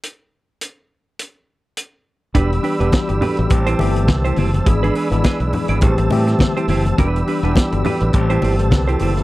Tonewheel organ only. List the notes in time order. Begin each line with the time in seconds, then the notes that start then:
2.35 G4 D5 B5 E6
3.52 C5 A5
4.67 G#4 D5 B5
5.82 G4 C5 A5 E6
6.98 D5 B5
8.13 C5 A5